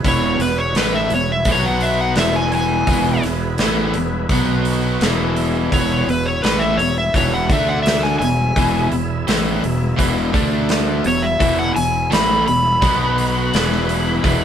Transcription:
Already playing: B3 E4 G#4 B4
0.04 E1 E2 B2 E3 C#5, kick, open hi-hat
0.39 E1 E2 B2 B4, snare, open hi-hat
0.58 C#5
0.74 A1 A2 B4, snare, open hi-hat
0.78 E3 A3
0.95 E5
1.09 E1, open hi-hat
1.14 E2 B2 C#5
1.32 E5
1.45 B1 B2, kick, open hi-hat
1.49 F#3 B3 F#4 B4 C#5
1.66 F#5
1.81 E5, open hi-hat
2.01 F#5
2.15 E1 E2 A3 C4 F4 C5, snare, open hi-hat
2.19 B2 E3 E5
2.36 G#5
2.41 B3 E4 G#4 B4
2.52 G#5, open hi-hat
2.87 E1 E2 B2 E3, kick, open hi-hat
3.23 E1 E2 B2, snare, open hi-hat
3.58 A1 A2 E3 A3, snare, open hi-hat
3.94 E1 B2, open hi-hat
3.98 E2
4.29 B1 B2 F#3 B3 F#4 B4, kick, open hi-hat
4.65 open hi-hat
5.01 E1 E2 B2 E3 B3 E4 G#4 E5, snare, open hi-hat
5.36 open hi-hat
5.72 E1 E2 B2 E3 C#5, kick, open hi-hat
6.07 E1 E2 B2 B4, open hi-hat
6.25 C#5
6.42 A1 A2 E3 A3 B4, snare, open hi-hat
6.59 E5
6.78 E1 E2 B2 C#5, open hi-hat
6.98 E5
7.14 E1 E2 B2 E3 C#5, kick, open hi-hat
7.34 F#5
7.49 D2 D3 A3 D4 A4 D5 E5, kick, open hi-hat
7.68 F#5
7.83 E5, open hi-hat
7.87 snare
8.03 G#5, snare
8.18 E1 B3 E4 G#4 E5 G#5, open hi-hat
8.22 E2 B2
8.56 E1 E2 B2 E3, kick, open hi-hat
8.91 E1 E2 B2, open hi-hat
9.27 A1 A2 E3 A3, snare, open hi-hat
9.63 E1 E2 B2, open hi-hat
9.97 E1 E2 B2 E3, kick, open hi-hat
10.33 D2 D3 A3 D4 A4 D5, kick, open hi-hat
10.69 snare, open hi-hat
11.04 E1 E2 B2 B3 E4 G#4 C#5 E5, open hi-hat
11.22 E5
11.39 E1 E2 B2 E3, kick, open hi-hat
11.59 F#5
11.76 E1 E2 B2 G#5, open hi-hat
12.11 A1 A2 E3 A3 B5, snare, open hi-hat
12.47 E1 E2 B2 B5, open hi-hat
12.82 B1 B2 F#3 B3 F#4 B4, kick, open hi-hat
13.18 open hi-hat
13.54 E1 E2 B2 E3 B3 E4 G#4 B4, snare, open hi-hat
13.72 snare
13.89 open hi-hat
14.23 E1 E2 B2 E3, kick, open hi-hat

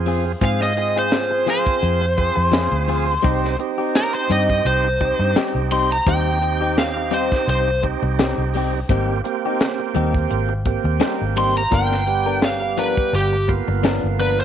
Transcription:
Already playing: F2 C4 F4 G#4
0.06 F3 C4 F4 G#4, open hi-hat
0.25 muted clean electric guitar stroke
0.41 G#2 F3 C4 F4 G#4 F5, kick, closed hi-hat
0.61 D#5, snare
0.76 C4 F4 G#4, muted clean electric guitar stroke, closed hi-hat
0.96 C4 F4 G#4 C5
1.12 snare, closed hi-hat
1.31 muted clean electric guitar stroke
1.46 F3 C4 F4 G#4 C5, snare, closed hi-hat
1.66 muted clean electric guitar stroke, kick
1.82 F2, muted clean electric guitar stroke, closed hi-hat
2.01 muted clean electric guitar stroke
2.17 C4 F4 G#4, muted clean electric guitar stroke, kick, closed hi-hat
2.35 F2, muted clean electric guitar stroke
2.52 F3 C4 F4 G#4, snare, closed hi-hat
2.72 D2
2.88 F3 C4 F4 G#4, open hi-hat
3.07 muted clean electric guitar stroke
3.23 C2 G3 C4 D#4 G4, kick, closed hi-hat
3.45 snare
3.58 C4 D#4 G4, muted clean electric guitar stroke, closed hi-hat
3.78 C4 D#4 G4
3.95 A#4, snare, closed hi-hat
4.14 C5, muted clean electric guitar stroke
4.30 G2 G3 C4 D#4 G4 D#5, closed hi-hat
4.49 muted clean electric guitar stroke, kick
4.65 C2 C5, muted clean electric guitar stroke, closed hi-hat
4.84 muted clean electric guitar stroke
5.00 C4 D#4 G4, muted clean electric guitar stroke, kick, closed hi-hat
5.19 G2, muted clean electric guitar stroke
5.35 G3 C4 D#4 G4, muted fingered electric bass stroke, snare, closed hi-hat
5.55 C2
5.71 G3 C4 D#4 G4 C6, open hi-hat
5.91 A#5, muted clean electric guitar stroke
6.07 D#2 G3 C4 D#4 G4 G5, kick, closed hi-hat
6.41 C4 D#4 G4, muted clean electric guitar stroke, closed hi-hat
6.61 C4 D#4 G4
6.77 F5, snare, closed hi-hat
6.97 muted clean electric guitar stroke
7.11 G3 C4 D#4 G4 C5, closed hi-hat
7.32 muted clean electric guitar stroke, kick, snare
7.47 C2 C5, muted clean electric guitar stroke, closed hi-hat
7.68 muted clean electric guitar stroke
7.83 C4 D#4 G4, muted clean electric guitar stroke, kick, closed hi-hat
8.02 C2, muted clean electric guitar stroke
8.19 G3 C4 D#4 G4, snare, closed hi-hat
8.38 C2
8.54 G3 C4 D#4 G4, open hi-hat
8.74 muted clean electric guitar stroke
8.89 G#1 G3 A#3 C4 D#4 G4, kick, closed hi-hat
9.24 A#3 C4 G4, muted clean electric guitar stroke, closed hi-hat
9.46 C4 D#4 G4
9.60 snare, closed hi-hat
9.80 muted clean electric guitar stroke
9.95 D#2 G3 C4 D#4 G4, closed hi-hat
10.14 muted clean electric guitar stroke, kick
10.30 G#1, muted clean electric guitar stroke, closed hi-hat
10.49 muted clean electric guitar stroke
10.65 A#3 C4 G4, muted clean electric guitar stroke, kick, closed hi-hat
10.84 D#2, muted clean electric guitar stroke
11.00 G3 C4 D#4 G4, snare, closed hi-hat
11.21 G#1
11.36 G3 C4 D#4 G4 C6, open hi-hat
11.55 A#5, muted clean electric guitar stroke
11.71 G1 F3 A#3 B3 D4 F4 A#4 G5, kick, closed hi-hat
11.92 snare
12.07 G3 B3 G4, muted clean electric guitar stroke, closed hi-hat
12.26 B3 D4 A#4
12.42 F5, snare, closed hi-hat
12.61 muted clean electric guitar stroke
12.77 F3 B3 D4 A#4 B4, closed hi-hat
12.96 muted clean electric guitar stroke, kick
13.13 G1 G4, muted clean electric guitar stroke, closed hi-hat
13.33 muted clean electric guitar stroke
13.48 A#3 B3 F4, muted clean electric guitar stroke, kick, closed hi-hat
13.68 G1, muted clean electric guitar stroke
13.83 F3 B3 D4 A#4, snare, closed hi-hat
14.04 G1
14.19 F3 B3 D4 A#4 B4, open hi-hat
14.38 C5, muted clean electric guitar stroke

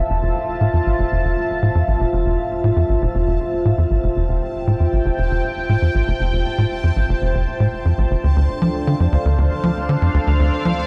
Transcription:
Already playing: F4 C5 E5 A5
0.10 F1
0.23 F1
0.61 A2
0.73 F2
0.86 A1
0.99 F1
1.12 F1
1.24 F1
1.62 A2
1.75 F2
1.88 A1
2.00 F1
2.13 F1
2.26 F1
2.64 A2
2.76 F2
2.89 A1
3.02 F1
3.15 F1
3.27 F1
3.65 A2
3.78 F2
3.91 A1
4.04 F1 G5
4.16 F1
4.29 F1
4.67 A2
4.80 F2
4.93 A1
5.05 F1
5.18 F1
5.31 F1
5.69 A2
5.82 F2
5.95 A1
6.08 F1
6.20 F1
6.33 F1
6.58 A2
6.84 F2
6.96 A1
7.09 F1
7.22 F1
7.34 F1
7.60 A2
7.85 F2
7.98 A1
8.11 F1
8.24 D2 D4
8.36 D2
8.45 A4
8.62 F3
8.76 F5
8.87 D3
9.00 F2
9.12 D2
9.25 D2
9.38 D2
9.63 F3
9.89 D3
10.02 F2
10.14 D2
10.27 D2
10.40 D2
10.65 F3

